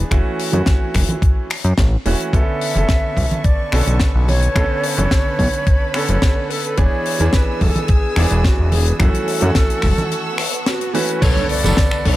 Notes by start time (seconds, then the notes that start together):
0.11 F#1 E3 A3 C#4 F#4, finger snap, kick, closed hi-hat
0.39 open hi-hat
0.52 F#2 E3 A3 C#4 F#4, closed hi-hat, low conga
0.66 kick, snare, closed hi-hat
0.94 F#1, finger snap, kick, open hi-hat, high conga
1.09 closed hi-hat, low conga
1.22 kick, closed hi-hat
1.50 finger snap, open hi-hat
1.64 F#2, closed hi-hat
1.78 A1, kick, snare, closed hi-hat
2.05 E1 E3 A3 C#4 F#4, open hi-hat
2.20 closed hi-hat
2.33 B1 D3 B3 C#4 A4 B4 E5 A5 C#6, kick, closed hi-hat
2.61 open hi-hat
2.75 F#1 D3 B3 C#4 A4, closed hi-hat, low conga
2.89 kick, snare, closed hi-hat
3.17 B1, kick, open hi-hat, high conga
3.31 closed hi-hat, low conga
3.44 D5, kick, closed hi-hat
3.72 B1 D3 B3 C#4 A4, finger snap, open hi-hat
3.87 B1, closed hi-hat
4.00 kick, snare, closed hi-hat
4.15 B1
4.28 C#5, open hi-hat, low conga
4.42 closed hi-hat
4.55 B1 D3 B3 C#4 A4 B5, finger snap, kick, closed hi-hat
4.83 open hi-hat
4.97 F#1 D3 B3 C#4 A4, closed hi-hat, low conga
5.11 kick, snare, closed hi-hat
5.39 B1, kick, open hi-hat, high conga
5.53 closed hi-hat
5.67 kick, closed hi-hat
5.94 D3 B3 C#4 A4, finger snap, open hi-hat
6.08 F#1, closed hi-hat
6.22 kick, snare, closed hi-hat
6.50 A4, open hi-hat
6.64 closed hi-hat
6.77 E1 E3 B3 D4 G#4 C#5 G#5 E6, kick, closed hi-hat
7.06 open hi-hat
7.19 E2 E3 B3 D4 G#4, closed hi-hat, low conga
7.33 B4, kick, snare, closed hi-hat
7.61 E1 A4, kick, open hi-hat, high conga
7.76 closed hi-hat, low conga
7.88 G#4, kick, closed hi-hat
8.16 E1 E3 B3 D4 G#4, finger snap, open hi-hat
8.30 E1, closed hi-hat
8.44 F#4, kick, snare, closed hi-hat
8.59 E1
8.72 G#4, open hi-hat, low conga
8.86 closed hi-hat
8.99 F#1 E3 A3 C#4 F#4 A4 F#5 C#6 E6, finger snap, kick, closed hi-hat
9.13 closed hi-hat, high conga
9.28 open hi-hat
9.41 F#2 E3 A3 C#4 F#4, closed hi-hat, low conga
9.55 kick, snare, closed hi-hat
9.70 closed hi-hat
9.82 F#1, finger snap, kick, open hi-hat, high conga
9.98 closed hi-hat, low conga
10.11 closed hi-hat, swell
10.38 finger snap, open hi-hat
10.53 closed hi-hat
10.66 F#4, snare, closed hi-hat
10.81 closed hi-hat
10.94 E3 A3 C#4 F#4 B4, open hi-hat
11.09 closed hi-hat
11.21 B1 D3 B3 D4 A4 B4 C#5 A5 C#6, kick, closed hi-hat, crash, tambourine, impact
11.36 tambourine, high conga
11.49 D5, open hi-hat
11.63 F#1 D3 B3 D4 A4 B4 C#5, closed hi-hat, tambourine, low conga
11.77 kick, snare, closed hi-hat, tambourine
11.91 finger snap, muted clean electric guitar stroke, tambourine
12.05 B1 D4 A4 B4 C#5, kick, open hi-hat